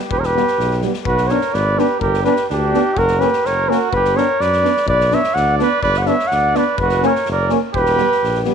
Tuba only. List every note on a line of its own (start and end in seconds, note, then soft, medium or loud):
0.12 0.38 E1 medium
0.59 0.85 B1 medium
1.07 1.33 B1 medium
1.53 1.80 G#1 loud
2.01 2.27 G1 loud
2.50 2.76 D2 medium
2.97 3.23 F#1 loud
3.45 3.71 F#1 medium
3.92 4.18 G1 medium
4.40 4.66 F#2 medium
4.87 5.13 B1 loud
5.35 5.61 D2 loud
5.84 6.10 G1 loud
6.32 6.58 D2 medium
6.80 7.06 F#1 loud
7.28 7.53 F#1 medium
7.75 8.01 E1 loud
8.23 8.48 A#1 medium